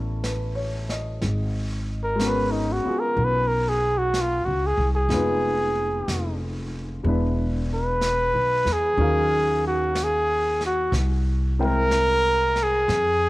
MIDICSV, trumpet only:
0, 0, Header, 1, 2, 480
1, 0, Start_track
1, 0, Tempo, 974026
1, 603, Time_signature, 4, 2, 24, 8
1, 6551, End_track
2, 0, Start_track
2, 0, Title_t, "Trumpet"
2, 0, Program_c, 0, 56
2, 1003, Note_on_c, 0, 70, 69
2, 1123, Note_on_c, 0, 71, 79
2, 1131, Note_off_c, 0, 70, 0
2, 1241, Note_on_c, 0, 63, 61
2, 1249, Note_off_c, 0, 71, 0
2, 1344, Note_on_c, 0, 66, 79
2, 1351, Note_off_c, 0, 63, 0
2, 1477, Note_on_c, 0, 70, 72
2, 1484, Note_off_c, 0, 66, 0
2, 1600, Note_on_c, 0, 71, 77
2, 1607, Note_off_c, 0, 70, 0
2, 1713, Note_on_c, 0, 70, 70
2, 1721, Note_off_c, 0, 71, 0
2, 1820, Note_on_c, 0, 68, 83
2, 1827, Note_off_c, 0, 70, 0
2, 1963, Note_on_c, 0, 66, 74
2, 1971, Note_off_c, 0, 68, 0
2, 2076, Note_on_c, 0, 65, 72
2, 2084, Note_off_c, 0, 66, 0
2, 2195, Note_on_c, 0, 66, 74
2, 2202, Note_off_c, 0, 65, 0
2, 2300, Note_on_c, 0, 68, 81
2, 2307, Note_off_c, 0, 66, 0
2, 2410, Note_off_c, 0, 68, 0
2, 2439, Note_on_c, 0, 68, 76
2, 3140, Note_off_c, 0, 68, 0
2, 3817, Note_on_c, 0, 71, 87
2, 4300, Note_on_c, 0, 68, 99
2, 4308, Note_off_c, 0, 71, 0
2, 4763, Note_off_c, 0, 68, 0
2, 4765, Note_on_c, 0, 66, 83
2, 4945, Note_on_c, 0, 68, 93
2, 4953, Note_off_c, 0, 66, 0
2, 5247, Note_off_c, 0, 68, 0
2, 5253, Note_on_c, 0, 66, 86
2, 5390, Note_off_c, 0, 66, 0
2, 5743, Note_on_c, 0, 70, 120
2, 6226, Note_on_c, 0, 68, 100
2, 6233, Note_off_c, 0, 70, 0
2, 6551, Note_off_c, 0, 68, 0
2, 6551, End_track
0, 0, End_of_file